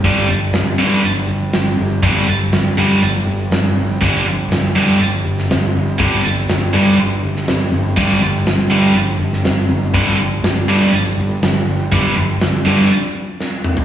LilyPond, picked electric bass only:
\new Staff \with { instrumentName = "Picked electric bass" } { \clef bass \time 4/4 \key c \mixolydian \tempo 4 = 121 g,,8 g,,8 g,,8 g,8 g,,8 g,,8 g,,8 g,,8 | g,,8 g,,8 g,,8 g,8 g,,8 g,,8 g,,8 g,,8 | g,,8 g,,8 g,,8 g,8 g,,8 g,,8 g,,8 g,,8 | g,,8 g,,8 g,,8 g,8 g,,8 g,,8 g,,8 g,,8 |
g,,8 g,,8 g,,8 g,8 g,,8 g,,8 g,,8 g,,8 | g,,8 g,,8 g,,8 g,8 g,,8 g,,8 g,,8 g,,8 | g,,8 g,,8 g,,8 g,8 r2 | }